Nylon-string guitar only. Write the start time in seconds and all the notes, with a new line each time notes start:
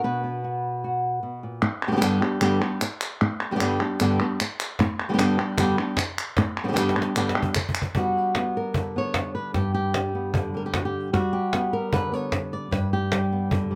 Already playing: B3 D4 F#4
0.04 B2 B4
0.24 B3
0.44 F#4
0.84 F#4
1.23 B2
1.43 A#2
1.62 muted nylon-string guitar stroke
1.87 D3 G3 B3 D4 G4
1.92 D3 G3 B3 D4 G4
1.96 D3 G3 B3 D4 G4
2.01 G2 D3 G3 B3 D4 G4
2.22 G3 B3 D4 G4
2.41 G2 D3 G3 B3 D4 G4
2.61 G3 B3 D4 G4
2.81 muted nylon-string guitar stroke
3.21 muted nylon-string guitar stroke
3.51 D3 G3 B3 D4 G4
3.55 D3 G3 B3 D4 G4
3.60 G2 D3 G3 B3 D4 G4
3.80 G3 B3 D4 G4
4.00 G2 D3 G3 B3 D4 G4
4.21 G3 B3 D4 G4
4.41 muted nylon-string guitar stroke
4.80 muted nylon-string guitar stroke
5.09 D3 G3 B3 D4 G4
5.13 D3 G3 B3 D4 G4
5.18 G2 D3 G3 B3 D4 G4
5.38 G3 B3 D4 G4
5.58 G2 D3 G3 B3 D4 G4
5.78 G3 B3 D4 G4
5.98 muted nylon-string guitar stroke
6.38 muted nylon-string guitar stroke
6.64 D3 G3 B3 D4 G4
6.68 D3 G3 B3 D4 G4
6.73 G2 G3 B3 D4 G4
6.77 D3 G3 B3 D4 G4
6.96 G3 B3 D4 G4
7.16 G2 D3 G3 B3 D4 G4
7.35 G3 B3 D4 G4
7.55 muted nylon-string guitar stroke
7.96 G3 B3 D4 F#4
8.17 G4
8.36 B3
8.57 A#4
8.77 D3 B4
8.96 B3 C#5
9.16 D4
9.35 B4
9.54 G2 G4
9.74 G4
9.95 G3
10.15 B3
10.34 D3
10.54 G3 A#4
10.66 G4
10.75 F#4
10.85 G4
11.13 G3 F#4
11.33 G4
11.54 B3
11.73 A#4
11.92 D3 B4
12.12 B3 C#5
12.53 D5
12.71 G2 B4
12.93 G4
13.12 G3
13.33 B3
13.51 D3
13.71 G3